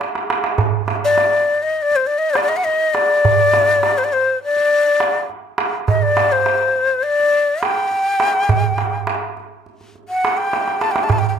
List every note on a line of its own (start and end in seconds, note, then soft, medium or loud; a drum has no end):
0.01 darbuka tek medium
0.15 darbuka ka medium
0.30 darbuka tek medium
0.44 darbuka ka medium
0.58 darbuka dum medium
0.88 darbuka tek medium
1.05 1.64 D5 medium
1.18 darbuka tek medium
1.48 darbuka ka soft
1.63 1.84 D#5 medium
1.82 1.97 D5 medium
1.91 darbuka ka soft
1.96 2.08 C5 medium
2.07 2.20 D5 medium
2.18 2.32 D#5 medium
2.30 2.38 C5 medium
2.30 2.35 D5 medium
2.35 2.42 D5 medium
2.35 darbuka tek medium
2.43 2.50 D5 medium
2.49 2.58 D#5 medium
2.56 2.66 F#5 medium
2.64 2.96 D#5 medium
2.64 darbuka ka soft
2.94 3.99 D5 loud
2.94 darbuka tek medium
3.25 darbuka dum medium
3.53 darbuka tek medium
3.83 darbuka tek medium
3.98 4.06 C5 medium
4.04 4.14 D5 medium
4.12 4.42 C5 medium
4.12 darbuka ka soft
4.43 5.21 D5 loud
4.57 darbuka ka soft
5.00 darbuka tek medium
5.29 darbuka ka soft
5.58 darbuka tek medium
5.88 6.04 D#5 medium
5.88 darbuka dum medium
6.02 6.33 D5 medium
6.17 darbuka tek medium
6.32 7.05 C5 medium
6.46 darbuka tek medium
6.76 darbuka ka soft
7.03 7.65 D5 loud
7.20 darbuka ka soft
7.63 9.22 G5 loud
7.63 darbuka tek medium
7.91 darbuka ka soft
8.20 darbuka tek medium
8.49 darbuka dum medium
8.64 darbuka ka soft
8.78 darbuka tek medium
8.93 darbuka ka soft
9.07 darbuka tek medium
9.37 darbuka ka soft
9.66 darbuka ka soft
9.81 darbuka ka soft
9.96 darbuka ka soft
10.09 10.39 F#5 medium
10.25 darbuka tek medium
10.37 10.83 G5 medium
10.53 darbuka tek medium
10.68 darbuka ka medium
10.81 10.93 A5 medium
10.81 darbuka tek medium
10.91 11.05 G5 medium
10.96 darbuka ka medium
11.03 11.11 A5 medium
11.09 11.13 G5 medium
11.09 11.20 A5 medium
11.09 darbuka dum medium
11.19 11.28 G5 medium
11.28 11.31 G5 medium